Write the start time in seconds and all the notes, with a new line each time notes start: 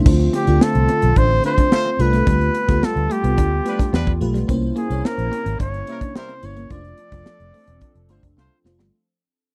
0.06 D2 D3 A3 C4 D4 F4 C5, kick, crash
0.20 muted clean electric guitar stroke, closed hi-hat
0.33 C4 G4, closed hi-hat
0.47 D2 A3 D4 F4 A4, closed hi-hat
0.61 A4, snare
0.75 C2, closed hi-hat
0.89 C4, closed hi-hat
1.02 B1, closed hi-hat
1.16 A1 D4 C5, kick, closed hi-hat
1.31 muted clean electric guitar stroke
1.44 A3 D4 F4 C5, snare, closed hi-hat
1.58 D4, kick, closed hi-hat
1.72 A3 F4 C5, snare
1.85 C4
1.99 C2 A3 D4 F4 A4 B4, muted clean electric guitar stroke, closed hi-hat
2.13 A3, snare, closed hi-hat
2.27 D2 G3 A3 B3 F4 G4 B4, kick, closed hi-hat
2.41 closed hi-hat
2.55 muted clean electric guitar stroke, closed hi-hat
2.68 D2 A3 B3 F4 G4 A4, kick, snare, closed hi-hat
2.82 A4, muted clean electric guitar stroke, snare
2.96 D2, closed hi-hat
3.10 A3 G4, closed hi-hat
3.24 C2 B3, closed hi-hat
3.37 D2 D4, kick, closed hi-hat
3.51 muted clean electric guitar stroke
3.65 F3 A3 D4 F4 G4 B4, snare, closed hi-hat
3.79 D4, kick, snare, closed hi-hat
3.93 E2 F3 B3 D4 B4, snare
4.07 muted clean electric guitar stroke, kick, closed hi-hat
4.21 B1 A3 F4 G4 B4, closed hi-hat
4.34 G3, snare, closed hi-hat
4.48 C2 C3 A#3 C4 C#4 E4 C5, kick, closed hi-hat
4.62 muted clean electric guitar stroke
4.76 A#3 G#4, closed hi-hat
4.90 C2 A#3 C#4 E4 C#5, closed hi-hat
5.05 A#4, snare
5.18 A#1, closed hi-hat
5.32 C4, closed hi-hat
5.46 G#1, closed hi-hat
5.59 G1 D4 C#5, kick, closed hi-hat
5.73 muted clean electric guitar stroke, closed hi-hat
5.87 G3 A#3 C#4 E4 A#4 C5, closed hi-hat
6.01 D4, kick, closed hi-hat
6.15 G3 E4 A#4 C5, snare
6.29 C4, closed hi-hat
6.43 G1 A#3 C#4 E4 C5 C#5, muted clean electric guitar stroke, closed hi-hat
6.57 A#3, closed hi-hat
6.70 F1 F3 A3 C4 D4 F4 A4 C5 D5, kick, closed hi-hat
6.85 closed hi-hat
6.98 muted clean electric guitar stroke, closed hi-hat
7.12 F1 A3 D4 F4 C5, kick, snare, closed hi-hat
7.26 snare
7.40 F1, closed hi-hat
7.54 A3, open hi-hat
7.68 E1 C4, closed hi-hat
7.81 D4, kick, closed hi-hat
7.95 F1, muted clean electric guitar stroke, closed hi-hat
8.09 G1 A3 D4 F4 C5, snare, closed hi-hat
8.23 F1 D4, kick, closed hi-hat
8.37 C2 A3 C4 F4 C5, snare
8.51 muted clean electric guitar stroke
8.64 F1 A3 D4 F4 C5, snare
8.79 G1 G3, snare